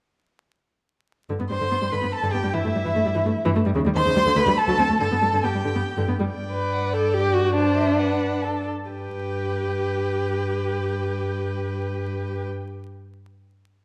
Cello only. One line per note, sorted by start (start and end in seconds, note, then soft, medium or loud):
1.29 1.34 G2 soft
1.40 1.44 G2 soft
1.50 1.54 G2 soft
1.60 1.65 G2 soft
1.71 1.76 G2 soft
1.82 1.86 G2 soft
1.92 1.96 G2 medium
2.03 2.07 G2 soft
2.23 2.27 G2 medium
2.34 2.38 G2 soft
2.44 2.48 G2 soft
2.54 2.59 G2 medium
2.65 2.69 G2 medium
2.75 2.79 G2 soft
2.85 2.90 G2 medium
2.96 3.00 G2 soft
3.06 3.10 G2 medium
3.15 3.20 G2 medium
3.25 3.30 G2 soft
3.46 3.50 G2 medium
3.56 3.60 G2 medium
3.66 3.70 G2 medium
3.75 3.79 D#2 medium
3.86 3.90 D#2 medium
3.95 4.00 D#2 medium
4.06 4.10 D#2 medium
4.15 4.20 D2 medium
4.26 4.30 D2 medium
4.36 4.40 D2 medium
4.47 4.51 D2 medium
4.68 4.72 D2 medium
4.78 4.83 D2 medium
4.89 4.94 D2 medium
5.00 5.05 G2 medium
5.11 5.16 G2 medium
5.22 5.27 G2 medium
5.33 5.37 G2 medium
5.44 5.48 G2 soft
5.54 5.59 G2 medium
5.65 5.69 G2 medium
5.76 5.80 G2 soft
5.97 6.01 G2 medium
6.08 6.13 G2 soft
6.19 6.24 G2 soft
6.30 8.64 G2 medium
8.91 12.45 G2 soft